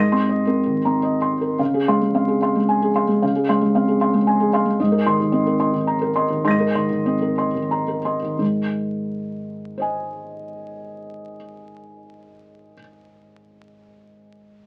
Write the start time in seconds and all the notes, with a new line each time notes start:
Already playing: G#2 D#5 C6 A#6
0.00 D#7
0.12 C4 C6
0.29 D#5
0.47 C4 A#4
0.66 D#3
0.85 C4 A#5
1.03 D#5
1.22 C6
1.41 A#4
1.59 C#3 F5
1.74 G#4
1.88 G#3 F5 C6
2.02 G#3
2.14 C4 F5
2.28 G#4
2.42 F5 C6
2.56 G#3
2.69 G#5
2.82 G#4
2.96 F5 C6
3.08 G#3
3.22 C#3 F5
3.36 G#4
3.49 G#3 F5 C6
3.62 G#3
3.75 C4 F5
3.88 G#4
4.01 F5 C6
4.14 G#3
4.27 G#5
4.40 G#4
4.53 F5 C6
4.66 G#3
4.80 G#2 D#5
4.92 A#4
5.06 D#3 D#5 C6
5.20 D#3
5.32 C4 D#5
5.46 A#4
5.59 D#5 C6
5.73 D#3
5.87 A#5
6.01 A#4
6.15 D#5 C6
6.29 D#3
6.45 G#2 D#5 C6 A#6
6.51 D#7
6.60 A#4
6.75 D#3 D#5 C6
6.90 D#3
7.06 C4 D#5
7.22 A#4
7.38 D#5 C6
7.54 D#3
7.71 A#5
7.88 A#4
8.05 D#5 C6
8.22 D#3
8.39 G#2 D#3
9.78 C5 D#5 G#5